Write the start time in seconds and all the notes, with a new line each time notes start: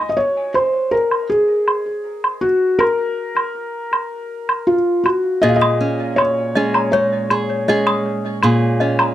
0.09 D#5
0.17 C#5
0.54 C5, low woodblock
0.91 A#4
1.11 low woodblock
1.30 G#4
1.68 low woodblock
2.24 low woodblock
2.41 F#4
2.79 A#4, low woodblock
3.37 low woodblock
3.93 low woodblock
4.49 low woodblock
4.67 F4
5.04 F#4, low woodblock
5.42 A#2 G#4 D#5
5.48 F5
5.56 D#5
5.61 D#6, low woodblock
5.81 C#4
6.16 C#5, low woodblock
6.55 G#3 C#4 G#4 D#5
6.74 A#5, low woodblock
6.92 G#3 C#5
7.30 G#4, low woodblock
7.68 G#3 C#4 G#4 D#5
7.87 D#6, low woodblock
8.43 A#2 G#4, low woodblock
8.80 C#4 D#5
8.99 A#5, low woodblock